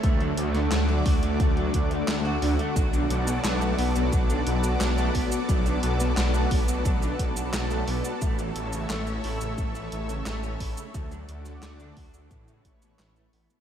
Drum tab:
HH |xxxxxxoxxxxxxxox|xxxxxxoxxxxxxxox|xxxxxxoxxxxxxxox|xxxxxxoxxxxxxxox|
SH |----------------|xx-xxx-xxx-xxx-x|xx-xxx-xxx-xxx-x|xx-xxx-xxx-xxx-x|
CP |----x-------x---|----x-------x---|----x-------x---|----x-------x---|
SD |---oo-------o---|----o-------o---|---oo-------o---|----o-------o---|
BD |o-----o-o-o-----|o-------o-----o-|o-----o-o-o-----|o-------o-----o-|

HH |xxxxxxoxxxxxxxox|
SH |xx-xxx-xxx-xxx-x|
CP |----x-------x---|
SD |---oo-------o---|
BD |o-----o-o-o-----|